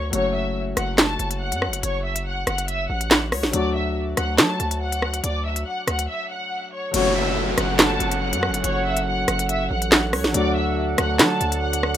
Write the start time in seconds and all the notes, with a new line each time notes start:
Already playing: D2 F#4 C#5 C#6
0.11 F#1 F#3 A3 C#4 C#5, closed hi-hat
0.15 F#4 C#6
0.34 E5 E6
0.76 F#1 F#5 F#6, cross-stick, closed hi-hat
0.97 A4 A5, snare, clap, closed hi-hat
1.19 F#1, closed hi-hat
1.31 closed hi-hat
1.40 F#5 F#6
1.52 F#2, closed hi-hat
1.62 cross-stick
1.68 F#1
1.73 closed hi-hat
1.83 F#1 C#5 C#6, closed hi-hat
2.04 E5 E6
2.16 closed hi-hat
2.27 F#5 F#6
2.47 F#1 F#5 F#6, cross-stick, closed hi-hat
2.58 closed hi-hat
2.68 E5 E6, closed hi-hat
2.90 A1 F#5 F#6
3.01 closed hi-hat
3.11 snare, clap
3.32 C#2 C#5 C#6, cross-stick, open hi-hat
3.43 A1, snare
3.51 D2 F#3 A3 D4 D5 D6, closed hi-hat
3.56 F#4
3.75 E5 E6
4.17 D2 F#5 F#6, cross-stick, closed hi-hat
4.38 F#3 A4 A5, snare, clap, closed hi-hat
4.60 D2, closed hi-hat
4.71 closed hi-hat
4.81 F#5 F#6
4.92 closed hi-hat
5.02 cross-stick
5.14 closed hi-hat
5.24 D2 D5 D6, closed hi-hat
5.45 E5 E6
5.56 closed hi-hat
5.66 F#5 F#6
5.87 D2 F#5 F#6, cross-stick, closed hi-hat
5.99 closed hi-hat
6.09 E5 E6
6.30 F#5 F#6
6.72 C#5 C#6
6.91 F#1 F#3 A3 C#4 A4 C#5 F#5 C#6, closed hi-hat, crash, downlifter
6.96 F#4
7.15 E5 E6
7.57 F#1 F#5 F#6, cross-stick, closed hi-hat
7.78 A4 A5, snare, clap, closed hi-hat
8.00 F#1, closed hi-hat
8.11 closed hi-hat
8.21 F#5 F#6
8.33 F#2, closed hi-hat
8.43 cross-stick
8.48 F#1
8.54 closed hi-hat
8.64 F#1 C#5 C#6, closed hi-hat
8.85 E5 E6
8.97 closed hi-hat
9.08 F#5 F#6
9.28 F#1 F#5 F#6, cross-stick, closed hi-hat
9.39 closed hi-hat
9.49 E5 E6, closed hi-hat
9.70 A1 F#5 F#6
9.82 closed hi-hat
9.92 snare, clap
10.13 C#2 C#5 C#6, cross-stick, open hi-hat
10.24 A1, snare
10.32 D2 D3 F#3 A3 D4 D5 F#5 D6, closed hi-hat
10.37 F#4
10.56 E5 E6
10.98 D2 F#5 F#6, cross-stick, closed hi-hat
11.19 F#3 A4 A5, snare, clap, closed hi-hat
11.41 D2, closed hi-hat
11.52 closed hi-hat
11.62 F#5 F#6
11.73 closed hi-hat
11.83 cross-stick